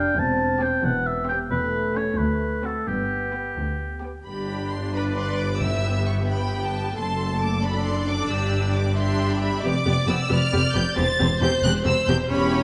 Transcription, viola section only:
0, 0, Header, 1, 2, 480
1, 0, Start_track
1, 0, Key_signature, 1, "major"
1, 0, Tempo, 444115
1, 193, Time_signature, 6, 3, 24, 8
1, 2114, Tempo, 460476
1, 4514, Tempo, 451467
1, 7394, Tempo, 444444
1, 13510, End_track
2, 0, Start_track
2, 0, Title_t, "Viola section"
2, 0, Program_c, 0, 48
2, 0, Note_on_c, 0, 62, 54
2, 133, Note_off_c, 0, 62, 0
2, 665, Note_on_c, 0, 60, 64
2, 847, Note_off_c, 0, 60, 0
2, 1380, Note_on_c, 0, 60, 54
2, 1564, Note_off_c, 0, 60, 0
2, 2118, Note_on_c, 0, 61, 53
2, 2291, Note_off_c, 0, 61, 0
2, 2831, Note_on_c, 0, 60, 39
2, 3010, Note_off_c, 0, 60, 0
2, 3549, Note_on_c, 0, 59, 42
2, 3730, Note_off_c, 0, 59, 0
2, 4278, Note_on_c, 0, 59, 37
2, 4456, Note_off_c, 0, 59, 0
2, 4518, Note_on_c, 0, 62, 46
2, 4519, Note_on_c, 0, 67, 46
2, 5194, Note_off_c, 0, 67, 0
2, 5238, Note_on_c, 0, 71, 47
2, 5915, Note_off_c, 0, 62, 0
2, 5958, Note_off_c, 0, 71, 0
2, 5960, Note_on_c, 0, 67, 42
2, 5966, Note_on_c, 0, 59, 51
2, 7368, Note_off_c, 0, 67, 0
2, 7371, Note_off_c, 0, 59, 0
2, 7397, Note_on_c, 0, 57, 49
2, 7399, Note_on_c, 0, 69, 49
2, 8120, Note_off_c, 0, 57, 0
2, 8120, Note_on_c, 0, 62, 55
2, 8812, Note_off_c, 0, 69, 0
2, 8835, Note_on_c, 0, 67, 56
2, 9543, Note_off_c, 0, 67, 0
2, 9544, Note_off_c, 0, 62, 0
2, 9557, Note_on_c, 0, 62, 63
2, 9559, Note_on_c, 0, 67, 62
2, 10253, Note_off_c, 0, 67, 0
2, 10264, Note_off_c, 0, 62, 0
2, 10266, Note_on_c, 0, 67, 62
2, 10268, Note_on_c, 0, 59, 56
2, 10352, Note_off_c, 0, 67, 0
2, 10354, Note_off_c, 0, 59, 0
2, 10510, Note_on_c, 0, 67, 56
2, 10513, Note_on_c, 0, 59, 60
2, 10597, Note_off_c, 0, 67, 0
2, 10599, Note_off_c, 0, 59, 0
2, 10746, Note_on_c, 0, 59, 63
2, 10748, Note_on_c, 0, 67, 60
2, 10833, Note_off_c, 0, 59, 0
2, 10835, Note_off_c, 0, 67, 0
2, 10984, Note_on_c, 0, 67, 64
2, 10987, Note_on_c, 0, 59, 65
2, 11071, Note_off_c, 0, 67, 0
2, 11074, Note_off_c, 0, 59, 0
2, 11230, Note_on_c, 0, 67, 62
2, 11231, Note_on_c, 0, 59, 55
2, 11316, Note_off_c, 0, 67, 0
2, 11317, Note_off_c, 0, 59, 0
2, 11462, Note_on_c, 0, 67, 57
2, 11465, Note_on_c, 0, 59, 58
2, 11549, Note_off_c, 0, 67, 0
2, 11551, Note_off_c, 0, 59, 0
2, 11704, Note_on_c, 0, 67, 64
2, 11708, Note_on_c, 0, 60, 64
2, 11791, Note_off_c, 0, 67, 0
2, 11795, Note_off_c, 0, 60, 0
2, 11953, Note_on_c, 0, 67, 59
2, 11959, Note_on_c, 0, 60, 69
2, 12039, Note_off_c, 0, 67, 0
2, 12045, Note_off_c, 0, 60, 0
2, 12201, Note_on_c, 0, 67, 63
2, 12203, Note_on_c, 0, 60, 66
2, 12287, Note_off_c, 0, 67, 0
2, 12289, Note_off_c, 0, 60, 0
2, 12439, Note_on_c, 0, 67, 65
2, 12441, Note_on_c, 0, 60, 68
2, 12526, Note_off_c, 0, 67, 0
2, 12527, Note_off_c, 0, 60, 0
2, 12668, Note_on_c, 0, 60, 64
2, 12669, Note_on_c, 0, 67, 63
2, 12755, Note_off_c, 0, 60, 0
2, 12756, Note_off_c, 0, 67, 0
2, 12911, Note_on_c, 0, 67, 64
2, 12914, Note_on_c, 0, 60, 61
2, 12997, Note_off_c, 0, 67, 0
2, 13001, Note_off_c, 0, 60, 0
2, 13154, Note_on_c, 0, 61, 74
2, 13158, Note_on_c, 0, 67, 67
2, 13510, Note_off_c, 0, 61, 0
2, 13510, Note_off_c, 0, 67, 0
2, 13510, End_track
0, 0, End_of_file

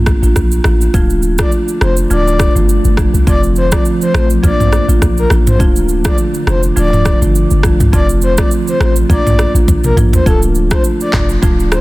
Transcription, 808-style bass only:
0, 0, Header, 1, 2, 480
1, 0, Start_track
1, 0, Key_signature, -1, "minor"
1, 0, Tempo, 582524
1, 775, Time_signature, 4, 2, 24, 8
1, 9729, End_track
2, 0, Start_track
2, 0, Title_t, "808-style bass"
2, 0, Program_c, 0, 38
2, 0, Note_on_c, 0, 34, 108
2, 115, Note_off_c, 0, 34, 0
2, 184, Note_on_c, 0, 33, 84
2, 273, Note_off_c, 0, 33, 0
2, 297, Note_on_c, 0, 34, 99
2, 491, Note_off_c, 0, 34, 0
2, 533, Note_on_c, 0, 33, 99
2, 728, Note_off_c, 0, 33, 0
2, 774, Note_on_c, 0, 26, 100
2, 1163, Note_off_c, 0, 26, 0
2, 1494, Note_on_c, 0, 29, 98
2, 1689, Note_off_c, 0, 29, 0
2, 1734, Note_on_c, 0, 26, 91
2, 2035, Note_off_c, 0, 26, 0
2, 2105, Note_on_c, 0, 31, 97
2, 2300, Note_off_c, 0, 31, 0
2, 2345, Note_on_c, 0, 31, 89
2, 2540, Note_off_c, 0, 31, 0
2, 2585, Note_on_c, 0, 36, 87
2, 2673, Note_off_c, 0, 36, 0
2, 2695, Note_on_c, 0, 29, 103
2, 3084, Note_off_c, 0, 29, 0
2, 3414, Note_on_c, 0, 33, 94
2, 3608, Note_off_c, 0, 33, 0
2, 3655, Note_on_c, 0, 34, 107
2, 3956, Note_off_c, 0, 34, 0
2, 4024, Note_on_c, 0, 33, 85
2, 4113, Note_off_c, 0, 33, 0
2, 4136, Note_on_c, 0, 34, 98
2, 4330, Note_off_c, 0, 34, 0
2, 4372, Note_on_c, 0, 33, 97
2, 4614, Note_on_c, 0, 26, 99
2, 4627, Note_off_c, 0, 33, 0
2, 5003, Note_off_c, 0, 26, 0
2, 5332, Note_on_c, 0, 29, 102
2, 5527, Note_off_c, 0, 29, 0
2, 5576, Note_on_c, 0, 26, 98
2, 5876, Note_off_c, 0, 26, 0
2, 5947, Note_on_c, 0, 31, 102
2, 6142, Note_off_c, 0, 31, 0
2, 6188, Note_on_c, 0, 31, 88
2, 6382, Note_off_c, 0, 31, 0
2, 6426, Note_on_c, 0, 36, 90
2, 6514, Note_off_c, 0, 36, 0
2, 6535, Note_on_c, 0, 29, 109
2, 6923, Note_off_c, 0, 29, 0
2, 7254, Note_on_c, 0, 33, 97
2, 7449, Note_off_c, 0, 33, 0
2, 7495, Note_on_c, 0, 34, 109
2, 7796, Note_off_c, 0, 34, 0
2, 7864, Note_on_c, 0, 33, 85
2, 7953, Note_off_c, 0, 33, 0
2, 7977, Note_on_c, 0, 34, 101
2, 8171, Note_off_c, 0, 34, 0
2, 8212, Note_on_c, 0, 33, 97
2, 8407, Note_off_c, 0, 33, 0
2, 8456, Note_on_c, 0, 26, 105
2, 8844, Note_off_c, 0, 26, 0
2, 9175, Note_on_c, 0, 29, 97
2, 9369, Note_off_c, 0, 29, 0
2, 9415, Note_on_c, 0, 26, 100
2, 9716, Note_off_c, 0, 26, 0
2, 9729, End_track
0, 0, End_of_file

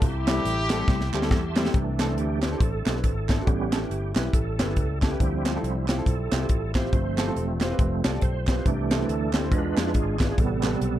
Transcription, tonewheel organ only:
0, 0, Header, 1, 2, 480
1, 0, Start_track
1, 0, Key_signature, 0, "major"
1, 0, Tempo, 431655
1, 20, Time_signature, 4, 2, 24, 8
1, 12221, End_track
2, 0, Start_track
2, 0, Title_t, "Tonewheel organ"
2, 0, Program_c, 0, 16
2, 0, Note_on_c, 0, 67, 65
2, 23, Note_on_c, 0, 81, 65
2, 25, Note_on_c, 0, 84, 75
2, 28, Note_on_c, 0, 76, 63
2, 1902, Note_off_c, 0, 67, 0
2, 1920, Note_off_c, 0, 81, 0
2, 1921, Note_off_c, 0, 84, 0
2, 1923, Note_off_c, 0, 76, 0
2, 1935, Note_on_c, 0, 52, 53
2, 1938, Note_on_c, 0, 57, 49
2, 1946, Note_on_c, 0, 62, 57
2, 2363, Note_on_c, 0, 69, 63
2, 2423, Note_off_c, 0, 69, 0
2, 2424, Note_on_c, 0, 67, 82
2, 2662, Note_off_c, 0, 52, 0
2, 2664, Note_off_c, 0, 57, 0
2, 2668, Note_off_c, 0, 62, 0
2, 2901, Note_on_c, 0, 69, 98
2, 2916, Note_off_c, 0, 67, 0
2, 3348, Note_off_c, 0, 69, 0
2, 3376, Note_on_c, 0, 69, 83
2, 3799, Note_on_c, 0, 66, 63
2, 3808, Note_off_c, 0, 69, 0
2, 3856, Note_on_c, 0, 55, 50
2, 3862, Note_off_c, 0, 66, 0
2, 3865, Note_on_c, 0, 59, 46
2, 3865, Note_on_c, 0, 67, 78
2, 3874, Note_on_c, 0, 61, 55
2, 4203, Note_off_c, 0, 55, 0
2, 4208, Note_off_c, 0, 59, 0
2, 4213, Note_off_c, 0, 61, 0
2, 4584, Note_off_c, 0, 67, 0
2, 4828, Note_on_c, 0, 69, 93
2, 5547, Note_off_c, 0, 69, 0
2, 5591, Note_on_c, 0, 67, 97
2, 5794, Note_on_c, 0, 53, 50
2, 5796, Note_on_c, 0, 55, 45
2, 5801, Note_on_c, 0, 60, 51
2, 5806, Note_on_c, 0, 64, 57
2, 6223, Note_off_c, 0, 67, 0
2, 6517, Note_off_c, 0, 53, 0
2, 6518, Note_off_c, 0, 55, 0
2, 6520, Note_off_c, 0, 60, 0
2, 6523, Note_off_c, 0, 64, 0
2, 6750, Note_on_c, 0, 69, 86
2, 7469, Note_off_c, 0, 69, 0
2, 7505, Note_on_c, 0, 72, 112
2, 7704, Note_on_c, 0, 53, 50
2, 7717, Note_on_c, 0, 57, 44
2, 7718, Note_on_c, 0, 60, 54
2, 8141, Note_off_c, 0, 72, 0
2, 8432, Note_off_c, 0, 53, 0
2, 8439, Note_off_c, 0, 57, 0
2, 8439, Note_off_c, 0, 60, 0
2, 8659, Note_on_c, 0, 53, 50
2, 8671, Note_on_c, 0, 57, 43
2, 8674, Note_on_c, 0, 60, 53
2, 8919, Note_off_c, 0, 53, 0
2, 8925, Note_off_c, 0, 57, 0
2, 8927, Note_off_c, 0, 60, 0
2, 8958, Note_on_c, 0, 74, 92
2, 9138, Note_off_c, 0, 74, 0
2, 9148, Note_on_c, 0, 72, 86
2, 9629, Note_on_c, 0, 52, 52
2, 9638, Note_on_c, 0, 62, 58
2, 9639, Note_on_c, 0, 57, 45
2, 9640, Note_on_c, 0, 67, 84
2, 9643, Note_off_c, 0, 72, 0
2, 10081, Note_off_c, 0, 67, 0
2, 10107, Note_on_c, 0, 69, 87
2, 10353, Note_off_c, 0, 52, 0
2, 10358, Note_off_c, 0, 62, 0
2, 10359, Note_off_c, 0, 57, 0
2, 10553, Note_off_c, 0, 69, 0
2, 10573, Note_on_c, 0, 65, 54
2, 10579, Note_on_c, 0, 56, 52
2, 10587, Note_on_c, 0, 62, 58
2, 10596, Note_on_c, 0, 71, 93
2, 11038, Note_off_c, 0, 71, 0
2, 11073, Note_on_c, 0, 68, 72
2, 11304, Note_off_c, 0, 65, 0
2, 11307, Note_off_c, 0, 56, 0
2, 11311, Note_off_c, 0, 62, 0
2, 11536, Note_on_c, 0, 48, 58
2, 11550, Note_on_c, 0, 55, 52
2, 11550, Note_on_c, 0, 59, 54
2, 11562, Note_on_c, 0, 69, 87
2, 11563, Note_off_c, 0, 68, 0
2, 12020, Note_off_c, 0, 69, 0
2, 12033, Note_on_c, 0, 69, 83
2, 12221, Note_off_c, 0, 48, 0
2, 12221, Note_off_c, 0, 55, 0
2, 12221, Note_off_c, 0, 59, 0
2, 12221, Note_off_c, 0, 69, 0
2, 12221, End_track
0, 0, End_of_file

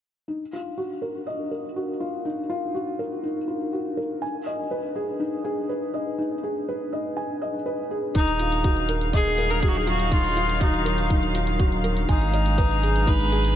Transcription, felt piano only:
0, 0, Header, 1, 2, 480
1, 0, Start_track
1, 0, Key_signature, -6, "minor"
1, 0, Tempo, 491803
1, 278, Time_signature, 4, 2, 24, 8
1, 13233, End_track
2, 0, Start_track
2, 0, Title_t, "Felt piano"
2, 0, Program_c, 0, 0
2, 272, Note_on_c, 0, 63, 58
2, 412, Note_off_c, 0, 63, 0
2, 483, Control_c, 0, 64, 127
2, 518, Note_on_c, 0, 65, 59
2, 746, Note_off_c, 0, 65, 0
2, 756, Note_on_c, 0, 66, 60
2, 985, Note_off_c, 0, 66, 0
2, 993, Note_on_c, 0, 70, 59
2, 1224, Note_off_c, 0, 70, 0
2, 1235, Note_on_c, 0, 75, 64
2, 1465, Note_off_c, 0, 75, 0
2, 1478, Note_on_c, 0, 70, 57
2, 1615, Note_off_c, 0, 70, 0
2, 1720, Note_on_c, 0, 66, 61
2, 1856, Note_off_c, 0, 66, 0
2, 1956, Note_on_c, 0, 65, 64
2, 2185, Note_off_c, 0, 65, 0
2, 2198, Note_on_c, 0, 63, 64
2, 2335, Note_off_c, 0, 63, 0
2, 2436, Note_on_c, 0, 65, 87
2, 2665, Note_off_c, 0, 65, 0
2, 2679, Note_on_c, 0, 66, 60
2, 2907, Note_off_c, 0, 66, 0
2, 2920, Note_on_c, 0, 70, 65
2, 3147, Note_off_c, 0, 70, 0
2, 3157, Note_on_c, 0, 63, 66
2, 3294, Note_off_c, 0, 63, 0
2, 3394, Note_on_c, 0, 65, 57
2, 3624, Note_off_c, 0, 65, 0
2, 3639, Note_on_c, 0, 66, 60
2, 3867, Note_off_c, 0, 66, 0
2, 3878, Note_on_c, 0, 70, 62
2, 4106, Note_off_c, 0, 70, 0
2, 4117, Note_on_c, 0, 80, 68
2, 4129, Control_c, 0, 64, 0
2, 4294, Control_c, 0, 64, 127
2, 4346, Note_off_c, 0, 80, 0
2, 4354, Note_on_c, 0, 75, 67
2, 4493, Note_off_c, 0, 75, 0
2, 4598, Note_on_c, 0, 71, 68
2, 4735, Note_off_c, 0, 71, 0
2, 4837, Note_on_c, 0, 68, 67
2, 5065, Note_off_c, 0, 68, 0
2, 5072, Note_on_c, 0, 63, 72
2, 5212, Note_off_c, 0, 63, 0
2, 5315, Note_on_c, 0, 68, 84
2, 5544, Note_off_c, 0, 68, 0
2, 5557, Note_on_c, 0, 71, 65
2, 5785, Note_off_c, 0, 71, 0
2, 5795, Note_on_c, 0, 75, 67
2, 6024, Note_off_c, 0, 75, 0
2, 6035, Note_on_c, 0, 63, 71
2, 6173, Note_off_c, 0, 63, 0
2, 6280, Note_on_c, 0, 68, 68
2, 6507, Note_off_c, 0, 68, 0
2, 6525, Note_on_c, 0, 71, 70
2, 6749, Note_off_c, 0, 71, 0
2, 6760, Note_on_c, 0, 75, 63
2, 6987, Note_off_c, 0, 75, 0
2, 6994, Note_on_c, 0, 80, 71
2, 7224, Note_off_c, 0, 80, 0
2, 7237, Note_on_c, 0, 75, 67
2, 7374, Note_off_c, 0, 75, 0
2, 7474, Note_on_c, 0, 71, 66
2, 7613, Note_off_c, 0, 71, 0
2, 7717, Note_on_c, 0, 68, 69
2, 7946, Note_off_c, 0, 68, 0
2, 7955, Note_on_c, 0, 63, 69
2, 7970, Control_c, 0, 64, 0
2, 8093, Note_off_c, 0, 63, 0
2, 8146, Control_c, 0, 64, 127
2, 8195, Note_on_c, 0, 65, 67
2, 8424, Note_off_c, 0, 65, 0
2, 8434, Note_on_c, 0, 66, 63
2, 8664, Note_off_c, 0, 66, 0
2, 8676, Note_on_c, 0, 70, 67
2, 8905, Note_off_c, 0, 70, 0
2, 8913, Note_on_c, 0, 75, 73
2, 9143, Note_off_c, 0, 75, 0
2, 9157, Note_on_c, 0, 70, 67
2, 9294, Note_off_c, 0, 70, 0
2, 9394, Note_on_c, 0, 66, 65
2, 9533, Note_off_c, 0, 66, 0
2, 9633, Note_on_c, 0, 65, 64
2, 9864, Note_off_c, 0, 65, 0
2, 9874, Note_on_c, 0, 63, 70
2, 10012, Note_off_c, 0, 63, 0
2, 10118, Note_on_c, 0, 65, 93
2, 10346, Note_off_c, 0, 65, 0
2, 10360, Note_on_c, 0, 66, 70
2, 10587, Note_off_c, 0, 66, 0
2, 10593, Note_on_c, 0, 70, 65
2, 10823, Note_off_c, 0, 70, 0
2, 10840, Note_on_c, 0, 63, 76
2, 10976, Note_off_c, 0, 63, 0
2, 11079, Note_on_c, 0, 65, 66
2, 11307, Note_off_c, 0, 65, 0
2, 11315, Note_on_c, 0, 66, 69
2, 11545, Note_off_c, 0, 66, 0
2, 11556, Note_on_c, 0, 70, 70
2, 11785, Note_off_c, 0, 70, 0
2, 11800, Note_on_c, 0, 80, 73
2, 11812, Control_c, 0, 64, 0
2, 11972, Control_c, 0, 64, 127
2, 12027, Note_off_c, 0, 80, 0
2, 12040, Note_on_c, 0, 75, 73
2, 12176, Note_off_c, 0, 75, 0
2, 12278, Note_on_c, 0, 71, 67
2, 12415, Note_off_c, 0, 71, 0
2, 12524, Note_on_c, 0, 68, 69
2, 12749, Note_off_c, 0, 68, 0
2, 12766, Note_on_c, 0, 63, 74
2, 12899, Note_off_c, 0, 63, 0
2, 13002, Note_on_c, 0, 68, 94
2, 13228, Note_off_c, 0, 68, 0
2, 13233, End_track
0, 0, End_of_file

